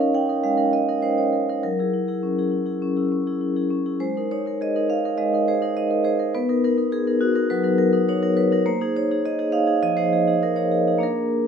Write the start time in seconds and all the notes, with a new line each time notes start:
Already playing: C#5 D#5 F5
0.00 D#4 A#4
0.15 D#4 G5
0.29 D#4 A#4
0.43 G#3 F5
0.57 D#4 A#4
0.73 A#4 D#5
0.89 D#4 A#4
1.02 D#4 C5
1.17 D#4 A#4 C#5
1.33 A#4
1.49 D#4 A#4
1.63 F#3 A#4
1.79 E4 G#4
1.94 E4
2.08 E4 G#4
2.23 C#4
2.38 E4 G#4
2.52 E4
2.66 E4 G#4
2.82 C#4
2.97 E4 G#4
3.12 C#4
3.27 E4 G#4
3.41 E4
3.56 E4 G#4
3.70 C#4
3.86 E4 G#4
4.00 G#3 C5
4.17 D#4 A#4
4.31 D#4 C#5
4.46 D#4 A#4
4.61 G#4 D#5
4.76 D#4 A#4
4.89 D#4 F5
5.05 D#4 A#4
5.18 G#3 D#5
5.33 D#4 A#4
5.48 G#4 C5
5.62 D#4 A#4
5.77 D#4 D#5
5.91 D#4 A#4
6.04 G#4 C5
6.19 D#4 A#4
6.35 B3 B4
6.49 D#4 A#4
6.64 D#4 A#4
6.77 D#4 A#4
6.92 G#4 A#4
7.07 D#4 A#4
7.21 D#4 F#4
7.35 D#4 A#4
7.50 F#3 B4
7.63 D#4 A#4
7.78 A#4
7.93 D#4 A#4
8.09 D#4 C#5
8.22 D#4 A#4
8.37 A#4 B4
8.52 D#4 A#4
8.66 A#3 C5
8.81 D#4 G#4
8.96 D#4 C#5
9.11 D#4 G#4
9.25 G#4 D#5
9.39 D#4 G#4
9.52 D#4 F5
9.67 D#4 G#4
9.83 F3 D#5
9.97 D#4 G#4 C5
10.13 G#4
10.27 D#4 G#4
10.42 D#4 A#4
10.56 D#4 G#4 C#5
10.72 G#4
10.88 D#4 G#4
10.98 A#3 D4 G#4
11.03 A#4